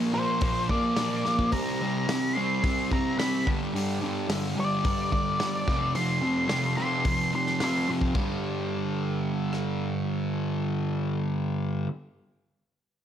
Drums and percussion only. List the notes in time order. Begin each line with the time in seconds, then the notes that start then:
0.41 kick, open hi-hat
0.69 kick
0.97 snare, open hi-hat
1.25 snare
1.39 kick
1.52 kick, open hi-hat
2.09 snare, open hi-hat
2.64 kick, open hi-hat
2.92 kick
3.20 snare, open hi-hat
3.47 kick
3.76 open hi-hat
4.30 snare, open hi-hat
4.85 kick, open hi-hat
5.12 kick
5.40 snare, open hi-hat
5.68 kick, snare
5.95 open hi-hat
6.49 snare, open hi-hat
7.05 kick, open hi-hat
7.47 snare
7.60 snare, open hi-hat
8.01 kick
8.15 kick, crash
9.53 cross-stick